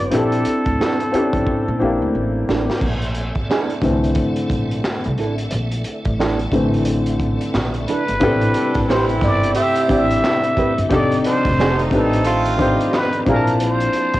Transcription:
Already playing: B3 C4 E4 F4 F#4 A4 D5
0.00 G1
0.11 A#1 C4 D4 E4 G4 A4, closed hi-hat
0.15 A4
0.32 closed hi-hat
0.45 muted upright bass stroke, closed hi-hat
0.66 D2, kick, closed hi-hat
0.80 D4 E4 A4, snare, clap
1.00 closed hi-hat
1.12 C4 C#4 E4 G4, muted upright bass stroke, closed hi-hat
1.16 D4 A4
1.33 F2, kick, closed hi-hat
1.47 kick
1.68 A#2
1.79 A#1 C4 D4 E4 G4
1.83 A#3
2.02 D2
2.15 A1
2.48 A1 D4 E4 A4, snare
2.70 snare
2.81 A#1 A3 C4 A4 D5 E5, kick, crash
3.02 closed hi-hat
3.15 closed hi-hat
3.35 kick, closed hi-hat
3.50 D4 E4 A4, snare, clap
3.70 closed hi-hat
3.82 C2 D3 E3 A3 C4, kick, snare, closed hi-hat
4.04 closed hi-hat
4.15 kick, closed hi-hat
4.36 closed hi-hat
4.50 A#1, kick, closed hi-hat
4.71 closed hi-hat
4.84 snare, clap
5.04 C2, closed hi-hat
5.18 A1 D4 E4 A4, closed hi-hat
5.38 closed hi-hat
5.51 A#1, closed hi-hat
5.71 closed hi-hat
5.84 closed hi-hat
6.05 A1, kick, closed hi-hat
6.19 D4 E4 A4, snare, clap
6.39 closed hi-hat
6.52 A1 D3 E3 A3 C4, kick, closed hi-hat
6.74 closed hi-hat
6.85 closed hi-hat
7.06 closed hi-hat
7.20 kick, closed hi-hat
7.41 closed hi-hat
7.54 A#1, snare, clap
7.74 closed hi-hat
7.88 D4 E4 A4 B4, closed hi-hat
8.08 G1, closed hi-hat
8.20 A1 C3 A3 B3 D4 E4 G4 A4, kick, closed hi-hat
8.27 C4
8.41 closed hi-hat
8.54 G3 B3 D4, closed hi-hat
8.74 A1, kick, snare, closed hi-hat
8.88 E3 C4 E4 G4 B4 C5, snare, clap
9.09 closed hi-hat
9.21 G1 D5, kick, snare, closed hi-hat
9.43 closed hi-hat
9.55 C4 E4 G4 E5, closed hi-hat
9.76 closed hi-hat
9.88 A1 C4 D4 E4 G4 E5, kick, closed hi-hat
9.92 D5
10.11 closed hi-hat
10.24 snare, clap
10.44 closed hi-hat
10.57 C4 G4 B4, muted upright bass stroke, kick, closed hi-hat
10.78 G1, closed hi-hat
10.89 F1 C3 D#3 F3 D4 D#4 G4 A4 D5, kick, closed hi-hat
10.93 A4
11.12 closed hi-hat
11.24 B2 G3 D4 C5, closed hi-hat
11.45 F1, kick, snare, closed hi-hat
11.58 A3 C4 D#4 G4 A4, snare, clap
11.79 closed hi-hat
11.91 A1 C4 D4 D#4 G4 A4 B4, kick, closed hi-hat
12.13 closed hi-hat
12.24 A3 C4 F4, closed hi-hat
12.45 closed hi-hat
12.58 C4 D4 D#4 G4, kick, closed hi-hat
12.62 C5
12.81 closed hi-hat
12.93 B4, snare, clap
13.13 closed hi-hat
13.26 A#1 F3 A#3 C4 D4 E4 F4 A4 A#4, kick, closed hi-hat
13.30 G#4
13.36 A5
13.47 closed hi-hat
13.60 C5, closed hi-hat
13.81 closed hi-hat
13.93 closed hi-hat
14.14 A#1, kick, snare, closed hi-hat

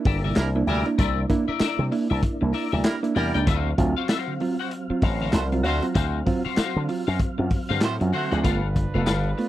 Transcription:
Already playing: A#3 D4 E4
0.05 G1 A#4 D5 E5, kick, open hi-hat
0.24 C3 G3 A#4 D5 E5
0.36 C2 G3 E4 A#4, muted clean electric guitar stroke, snare, clap, closed hi-hat
0.55 A#3 D4 E4, muted clean electric guitar stroke
0.67 D2 C3 G3 E4 A#4 D5 E5, open hi-hat
0.86 A#3 D4 E4, muted clean electric guitar stroke, closed hi-hat
0.98 C2 C3 G3 A#4 D5 E5, kick, closed hi-hat
1.30 A#3 D4 E4, muted clean electric guitar stroke, kick, closed hi-hat
1.48 D4 E4 A#4 D5 E5, muted slap bass stroke
1.60 D4 E4 A#4 D5 E5, muted slap bass stroke, snare, clap, closed hi-hat
1.79 C3 G3
1.92 A#3 D4 E4, muted clean electric guitar stroke, open hi-hat
2.10 C2 A#4 D5 E5
2.23 muted clean electric guitar stroke, kick, closed hi-hat
2.41 C2 A#3 D4 E4, muted clean electric guitar stroke
2.53 A#4 D5 E5, open hi-hat
2.72 D2 C3 G3 A#4 D5 E5
2.84 G3 E4 A#4, muted clean electric guitar stroke, snare, clap, closed hi-hat
3.03 A#3 D4 E4, muted clean electric guitar stroke, closed hi-hat
3.15 E2 C3 G3 E4 A#4 D5 G5, open hi-hat
3.34 C#2 A#3 D4 E4 A#4 D5 G5, closed hi-hat
3.46 D2 D3 F#3 C4 F#4 C5 F5, kick, closed hi-hat
3.78 D2 F#3 C4 F4, muted clean electric guitar stroke, kick, closed hi-hat
3.97 C4 F4 F#4 C5 F5
4.09 C4 F4 F#4 C5 F5, snare, clap, closed hi-hat
4.28 D3
4.40 F#3 C4 F4, muted clean electric guitar stroke, open hi-hat
4.59 F#4 C5 F#5
4.71 muted clean electric guitar stroke, closed hi-hat
4.90 F#3 C4 F4, muted slap bass stroke, muted clean electric guitar stroke
5.02 A1 F#4 C5 F5, kick, open hi-hat
5.21 D3 F#4 C5 F5
5.33 C2 A3 F#4 C5, muted clean electric guitar stroke, snare, clap, closed hi-hat
5.52 F#3 C4 F4, muted clean electric guitar stroke, closed hi-hat
5.64 D2 D3 A3 F#4 C5 F5, open hi-hat
5.82 F#3 C4 F4, muted clean electric guitar stroke, closed hi-hat
5.94 D2 D3 F#4 C5 F5, kick, closed hi-hat
6.26 F#3 C4 F4, muted clean electric guitar stroke, kick, open hi-hat
6.45 C4 F4 F#4 C5 F5, muted slap bass stroke
6.57 C4 F4 F#4 C5 F5, muted slap bass stroke, snare, clap, closed hi-hat
6.76 D3
6.88 F#3 C4 F4, muted clean electric guitar stroke, open hi-hat
7.07 F#2 F#4 C5 F5
7.20 muted clean electric guitar stroke, kick, closed hi-hat
7.38 F#2 F#3 C4 F4, muted clean electric guitar stroke
7.50 kick, open hi-hat
7.69 G2 D3 F#4 C5 F5
7.81 A2 A3 F#4 C5, muted clean electric guitar stroke, snare, clap, closed hi-hat
8.00 F#2 F#3 C4 F4, muted clean electric guitar stroke, closed hi-hat
8.13 D3 A3 F#4 C5 F#5, open hi-hat
8.31 D2 F#3 C4 F4 F#4 C5 F#5, closed hi-hat
8.43 G1 F3 A3 B3 D4 F4 A4 B4 F5, kick, closed hi-hat
8.76 G2 D3, muted clean electric guitar stroke, kick, closed hi-hat
8.94 F1 A3 B3 F4 A4 B4 F5
9.06 G1 G2 D3 A4 B4 F5, snare, clap, closed hi-hat
9.37 A3 B3 F4, muted clean electric guitar stroke, open hi-hat

